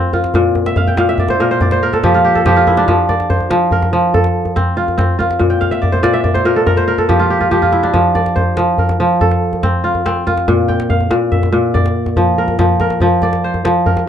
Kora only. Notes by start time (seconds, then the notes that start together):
Already playing: F3 C4 F4 A4
0.13 F4
0.35 A#2
0.66 E5
0.77 F5
0.87 G5
0.98 A#2 F5
1.09 E5
1.19 D5
1.30 C5
1.40 A#2 A#4
1.51 C5
1.62 D5
1.72 C5
1.83 A#4
1.93 A4
2.04 F3 G4
2.14 F4
2.24 G4
2.35 A4
2.46 F3 G4
2.56 F4
2.67 E4
2.77 D4
2.88 F3
3.09 D5
3.30 C5
3.50 F3
3.72 A#4
3.93 F3
4.14 A4
4.56 C4
4.77 F4
4.98 C4
5.19 F4
5.39 A#2
5.50 G5
5.61 F5
5.71 E5
5.82 D5
5.92 C5
6.03 A#2 D5
6.13 E5
6.24 D5
6.34 C5
6.45 A#2 A#4
6.56 A4
6.66 A#4
6.77 C5
6.88 A#4
6.98 A4
7.09 F3 G4
7.19 F4
7.30 G4
7.41 F4
7.51 F3 G4
7.62 F4
7.72 E4
7.83 D4
7.94 F3
8.15 D5
8.36 C5
8.57 F3
8.79 A#4
9.00 F3
9.21 A4
9.63 C4
9.84 F4
10.06 C4
10.27 F4
10.48 A#2
10.68 G5
10.90 F5
11.11 A#2
11.32 E5
11.52 A#2
11.74 D5
12.17 F3
12.38 A#4
12.59 F3
12.80 A#4
13.01 F3
13.23 D5
13.44 C5
13.65 F3
13.86 A#4